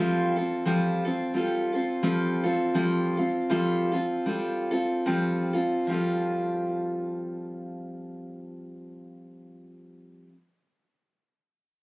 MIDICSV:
0, 0, Header, 1, 2, 480
1, 0, Start_track
1, 0, Key_signature, -1, "major"
1, 0, Tempo, 685714
1, 1428, Tempo, 727273
1, 1901, Time_signature, 4, 2, 24, 8
1, 2388, Tempo, 767263
1, 2868, Tempo, 821918
1, 3828, Tempo, 865801
1, 7107, End_track
2, 0, Start_track
2, 0, Title_t, "Steel-string acoustic guitar"
2, 0, Program_c, 0, 25
2, 0, Note_on_c, 0, 53, 69
2, 0, Note_on_c, 0, 55, 66
2, 0, Note_on_c, 0, 60, 79
2, 0, Note_on_c, 0, 65, 72
2, 0, Note_on_c, 0, 69, 72
2, 244, Note_off_c, 0, 69, 0
2, 251, Note_off_c, 0, 53, 0
2, 252, Note_off_c, 0, 55, 0
2, 253, Note_off_c, 0, 60, 0
2, 253, Note_off_c, 0, 65, 0
2, 253, Note_on_c, 0, 69, 46
2, 262, Note_on_c, 0, 65, 39
2, 269, Note_on_c, 0, 60, 34
2, 456, Note_off_c, 0, 60, 0
2, 458, Note_on_c, 0, 53, 73
2, 459, Note_off_c, 0, 65, 0
2, 459, Note_off_c, 0, 69, 0
2, 463, Note_on_c, 0, 55, 68
2, 465, Note_on_c, 0, 60, 77
2, 468, Note_on_c, 0, 65, 78
2, 469, Note_on_c, 0, 69, 80
2, 725, Note_off_c, 0, 69, 0
2, 730, Note_off_c, 0, 53, 0
2, 732, Note_off_c, 0, 65, 0
2, 733, Note_off_c, 0, 55, 0
2, 733, Note_on_c, 0, 69, 42
2, 734, Note_off_c, 0, 60, 0
2, 740, Note_on_c, 0, 65, 46
2, 749, Note_on_c, 0, 60, 39
2, 935, Note_off_c, 0, 60, 0
2, 936, Note_on_c, 0, 55, 49
2, 940, Note_off_c, 0, 65, 0
2, 940, Note_off_c, 0, 69, 0
2, 943, Note_on_c, 0, 60, 50
2, 949, Note_on_c, 0, 65, 53
2, 955, Note_on_c, 0, 69, 60
2, 1202, Note_off_c, 0, 69, 0
2, 1210, Note_on_c, 0, 69, 44
2, 1212, Note_off_c, 0, 65, 0
2, 1214, Note_off_c, 0, 55, 0
2, 1218, Note_off_c, 0, 60, 0
2, 1221, Note_on_c, 0, 65, 43
2, 1227, Note_on_c, 0, 60, 41
2, 1416, Note_off_c, 0, 60, 0
2, 1418, Note_off_c, 0, 65, 0
2, 1419, Note_on_c, 0, 53, 73
2, 1420, Note_on_c, 0, 55, 70
2, 1422, Note_off_c, 0, 69, 0
2, 1424, Note_on_c, 0, 60, 75
2, 1427, Note_on_c, 0, 65, 71
2, 1430, Note_on_c, 0, 69, 73
2, 1681, Note_off_c, 0, 69, 0
2, 1687, Note_off_c, 0, 65, 0
2, 1689, Note_on_c, 0, 69, 48
2, 1691, Note_off_c, 0, 53, 0
2, 1691, Note_off_c, 0, 55, 0
2, 1693, Note_off_c, 0, 60, 0
2, 1695, Note_on_c, 0, 65, 43
2, 1705, Note_on_c, 0, 60, 38
2, 1888, Note_off_c, 0, 60, 0
2, 1892, Note_on_c, 0, 53, 58
2, 1893, Note_off_c, 0, 65, 0
2, 1894, Note_off_c, 0, 69, 0
2, 1896, Note_on_c, 0, 60, 63
2, 1897, Note_on_c, 0, 55, 64
2, 1901, Note_on_c, 0, 65, 66
2, 1902, Note_on_c, 0, 69, 70
2, 2165, Note_off_c, 0, 69, 0
2, 2171, Note_off_c, 0, 53, 0
2, 2173, Note_on_c, 0, 69, 40
2, 2174, Note_off_c, 0, 55, 0
2, 2174, Note_off_c, 0, 60, 0
2, 2175, Note_off_c, 0, 65, 0
2, 2183, Note_on_c, 0, 65, 36
2, 2186, Note_on_c, 0, 60, 35
2, 2387, Note_off_c, 0, 60, 0
2, 2387, Note_off_c, 0, 69, 0
2, 2388, Note_on_c, 0, 53, 63
2, 2389, Note_off_c, 0, 65, 0
2, 2390, Note_on_c, 0, 55, 68
2, 2395, Note_on_c, 0, 60, 65
2, 2396, Note_on_c, 0, 65, 75
2, 2400, Note_on_c, 0, 69, 71
2, 2644, Note_off_c, 0, 69, 0
2, 2652, Note_on_c, 0, 69, 45
2, 2653, Note_off_c, 0, 65, 0
2, 2658, Note_off_c, 0, 53, 0
2, 2660, Note_off_c, 0, 55, 0
2, 2661, Note_on_c, 0, 65, 45
2, 2662, Note_off_c, 0, 60, 0
2, 2669, Note_on_c, 0, 60, 35
2, 2862, Note_off_c, 0, 60, 0
2, 2864, Note_off_c, 0, 69, 0
2, 2865, Note_on_c, 0, 55, 49
2, 2867, Note_off_c, 0, 65, 0
2, 2870, Note_on_c, 0, 60, 49
2, 2874, Note_on_c, 0, 65, 50
2, 2878, Note_on_c, 0, 69, 54
2, 3122, Note_off_c, 0, 69, 0
2, 3129, Note_off_c, 0, 65, 0
2, 3129, Note_on_c, 0, 69, 44
2, 3130, Note_off_c, 0, 55, 0
2, 3132, Note_off_c, 0, 60, 0
2, 3136, Note_on_c, 0, 65, 37
2, 3142, Note_on_c, 0, 60, 33
2, 3330, Note_off_c, 0, 60, 0
2, 3332, Note_off_c, 0, 65, 0
2, 3332, Note_on_c, 0, 53, 60
2, 3335, Note_off_c, 0, 69, 0
2, 3335, Note_on_c, 0, 55, 66
2, 3337, Note_on_c, 0, 60, 59
2, 3339, Note_on_c, 0, 65, 59
2, 3342, Note_on_c, 0, 69, 60
2, 3602, Note_off_c, 0, 69, 0
2, 3609, Note_on_c, 0, 69, 38
2, 3610, Note_off_c, 0, 53, 0
2, 3610, Note_off_c, 0, 65, 0
2, 3612, Note_off_c, 0, 55, 0
2, 3613, Note_off_c, 0, 60, 0
2, 3617, Note_on_c, 0, 65, 35
2, 3624, Note_on_c, 0, 60, 33
2, 3807, Note_on_c, 0, 53, 49
2, 3819, Note_on_c, 0, 55, 47
2, 3823, Note_off_c, 0, 60, 0
2, 3826, Note_off_c, 0, 69, 0
2, 3830, Note_off_c, 0, 65, 0
2, 3830, Note_on_c, 0, 60, 52
2, 3838, Note_on_c, 0, 65, 56
2, 3848, Note_on_c, 0, 69, 59
2, 6243, Note_off_c, 0, 53, 0
2, 6255, Note_off_c, 0, 55, 0
2, 6266, Note_off_c, 0, 60, 0
2, 6274, Note_off_c, 0, 65, 0
2, 6283, Note_off_c, 0, 69, 0
2, 7107, End_track
0, 0, End_of_file